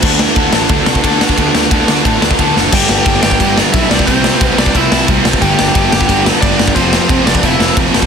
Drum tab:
CC |x---------------|----------------|x---x---x---x---|x---x---x---x---|
RD |----x---x---x---|x---x---x---x---|----------------|----------------|
SD |--o---o---o---o-|--o---o---o---o-|--o---o---o---o-|--o---o---o---o-|
BD |o---o---o--oo--o|o---o---o--oo---|o---o--oo---o--o|o---o--oo---o--o|

CC |x---x---x---x---|x---x---x---x---|
RD |----------------|----------------|
SD |--o---o---o---o-|--o---o---o---o-|
BD |o---o--oo---o--o|o---o--oo---o--o|